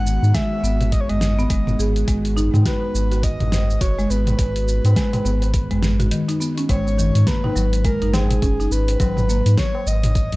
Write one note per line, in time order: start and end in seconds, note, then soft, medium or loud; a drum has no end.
0.00 0.18 G#1 medium
0.00 6.69 D#3 medium
0.00 6.69 G#3 medium
0.00 6.69 B3 medium
0.00 6.69 F#4 medium
0.00 6.69 G#4 medium
0.00 0.36 F#5 loud
0.07 shaker medium
0.22 0.33 G#2 loud
0.22 shaker soft
0.34 0.51 G#3 loud
0.34 0.92 E5 loud
0.34 kick medium
0.34 snare medium
0.34 open hi-hat medium
0.34 shaker soft
0.53 tabla tin soft
0.63 1.05 G#1 medium
0.63 1.08 B3 medium
0.63 shaker medium
0.81 mid tom medium
0.81 open hi-hat soft
0.81 tabla tin medium
0.81 shaker soft
0.92 1.02 D#5 medium
0.92 kick medium
0.92 open hi-hat medium
0.92 shaker soft
1.00 1.11 C#5 medium
1.09 1.47 G#1 medium
1.09 1.21 G#3 medium
1.09 1.79 D#5 medium
1.09 open hi-hat soft
1.09 tabla ge medium
1.21 snare medium
1.21 shaker medium
1.39 1.50 B3 loud
1.39 shaker soft
1.50 1.75 F#1 medium
1.50 1.66 G#3 loud
1.50 kick medium
1.50 open hi-hat medium
1.50 shaker soft
1.67 1.78 B3 medium
1.67 mid tom medium
1.67 shaker soft
1.79 2.04 G#1 medium
1.79 2.07 G#4 medium
1.79 shaker medium
1.96 open hi-hat soft
1.96 shaker soft
2.08 2.49 G#1 medium
2.08 2.24 G#3 loud
2.08 kick loud
2.08 open hi-hat medium
2.08 shaker soft
2.25 open hi-hat soft
2.25 shaker soft
2.37 2.52 D#4 loud
2.37 tabla ge medium
2.37 shaker medium
2.54 2.63 G#2 loud
2.54 2.65 G#3 medium
2.54 mid tom medium
2.54 tabla na medium
2.54 shaker soft
2.65 2.82 F#4 loud
2.65 3.25 B4 loud
2.65 kick loud
2.65 snare medium
2.65 open hi-hat medium
2.65 shaker soft
2.82 tabla tin soft
2.94 3.36 G#1 medium
2.94 shaker medium
3.12 3.18 F#4 medium
3.12 open hi-hat soft
3.12 tabla tin medium
3.12 shaker soft
3.23 3.81 D#5 loud
3.23 kick medium
3.23 open hi-hat medium
3.23 shaker soft
3.40 3.78 G#1 medium
3.40 mid tom medium
3.40 open hi-hat soft
3.40 tabla ge medium
3.52 snare medium
3.52 tabla tin medium
3.52 shaker medium
3.70 tabla tin soft
3.70 shaker soft
3.81 4.06 F#1 medium
3.81 3.97 F#4 medium
3.81 4.11 C#5 loud
3.81 kick loud
3.81 open hi-hat medium
3.81 shaker soft
3.99 4.05 G#3 loud
3.99 shaker soft
4.10 4.35 G#1 medium
4.10 4.67 B3 medium
4.10 6.41 B4 loud
4.10 shaker medium
4.27 mid tom medium
4.27 open hi-hat soft
4.27 tabla na soft
4.27 shaker soft
4.39 4.80 G#1 medium
4.39 kick loud
4.39 open hi-hat medium
4.39 shaker soft
4.56 open hi-hat soft
4.56 shaker soft
4.68 shaker medium
4.84 4.94 G#2 loud
4.84 open hi-hat soft
4.84 tabla na medium
4.84 shaker soft
4.96 5.13 G#3 loud
4.96 kick loud
4.96 snare medium
4.96 open hi-hat medium
4.96 shaker soft
5.13 mid tom medium
5.13 open hi-hat soft
5.13 tabla na medium
5.13 tabla tin soft
5.13 shaker soft
5.25 5.67 G#1 medium
5.25 5.69 B3 medium
5.25 shaker medium
5.42 open hi-hat soft
5.42 tabla tin medium
5.42 shaker soft
5.54 kick medium
5.54 open hi-hat medium
5.54 shaker soft
5.71 6.12 G#1 medium
5.71 5.82 G#3 medium
5.71 open hi-hat soft
5.71 tabla na soft
5.71 tabla ge medium
5.83 snare medium
5.83 shaker medium
6.00 6.11 F#4 medium
6.00 mid tom medium
6.00 open hi-hat soft
6.00 shaker soft
6.11 6.28 D#3 medium
6.11 open hi-hat medium
6.11 shaker soft
6.28 6.40 D#4 medium
6.28 open hi-hat soft
6.28 shaker soft
6.40 6.56 B3 medium
6.40 shaker medium
6.58 6.68 C#4 medium
6.58 open hi-hat soft
6.58 shaker soft
6.69 7.11 G#1 loud
6.69 6.86 G#3 medium
6.69 7.29 C#5 loud
6.69 kick loud
6.69 open hi-hat medium
6.69 tabla na medium
6.69 shaker soft
6.87 shaker soft
6.98 7.14 D#3 medium
6.98 tabla ge medium
6.98 shaker medium
7.15 7.25 G#2 loud
7.15 open hi-hat soft
7.15 shaker soft
7.27 7.43 A#3 medium
7.27 7.84 B4 loud
7.27 kick loud
7.27 snare medium
7.27 open hi-hat medium
7.27 shaker soft
7.44 7.51 D#4 medium
7.44 mid tom medium
7.44 tabla na medium
7.56 7.97 G#1 medium
7.56 7.83 F#3 medium
7.56 shaker medium
7.73 open hi-hat soft
7.73 tabla tin soft
7.73 shaker soft
7.85 8.00 G#3 loud
7.85 8.15 A#4 loud
7.85 kick loud
7.85 open hi-hat medium
7.85 shaker soft
8.01 8.39 G#1 medium
8.01 8.13 D#4 medium
8.01 open hi-hat soft
8.01 tabla ge medium
8.13 8.71 G#4 loud
8.13 snare medium
8.13 tabla na medium
8.13 shaker medium
8.31 mid tom medium
8.31 open hi-hat soft
8.31 tabla tin medium
8.31 shaker soft
8.42 8.67 F#1 medium
8.42 8.59 C#4 medium
8.42 kick loud
8.42 open hi-hat medium
8.42 shaker soft
8.60 8.66 D#4 medium
8.60 shaker soft
8.71 8.96 G#1 medium
8.71 9.54 B4 loud
8.71 shaker medium
8.88 open hi-hat soft
8.88 tabla tin medium
8.88 shaker soft
9.00 9.42 G#1 medium
9.00 9.28 F#3 loud
9.00 kick loud
9.00 open hi-hat medium
9.00 tabla na medium
9.00 shaker soft
9.17 mid tom medium
9.17 shaker soft
9.29 9.45 A#3 medium
9.29 shaker medium
9.46 9.56 G#2 loud
9.46 open hi-hat soft
9.46 shaker soft
9.58 9.88 C#5 loud
9.58 kick loud
9.58 snare medium
9.58 open hi-hat medium
9.58 shaker soft
9.75 tabla na medium
9.86 10.28 G#1 medium
9.86 10.36 D#5 loud
9.86 shaker medium
10.03 mid tom medium
10.03 open hi-hat soft
10.03 shaker soft
10.15 kick loud
10.15 open hi-hat medium
10.15 shaker soft
10.32 10.36 G#1 medium
10.32 open hi-hat soft
10.32 tabla ge loud